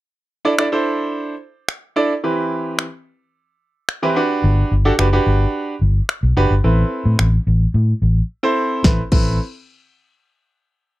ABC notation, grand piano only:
X:1
M:4/4
L:1/16
Q:1/4=109
K:Ador
V:1 name="Grand piano"
z3 [DEAd] [DEAd] [DEAc]4 z4 z [DEAd] z | [E,CEGB]4 z8 z [E,CEGB] [DFGB]2- | [DFGB]2 z [DFGA] [DFGB] [DFGB]4 z4 z [DFGB] z | [CEAB]4 z8 z [CEAc]3 |
[CEAB] z [CEAB]2 z12 |]